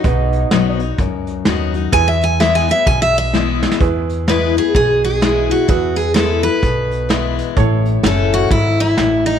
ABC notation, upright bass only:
X:1
M:4/4
L:1/8
Q:"Swing" 1/4=128
K:E
V:1 name="Upright bass" clef=bass
B,,,2 B,,,2 C,,2 D,,2 | E,,4 B,,,4 | E,,4 B,,,4 | E,,4 B,,,4 |
A,,,2 F,,,2 G,,,2 A,,,2 |]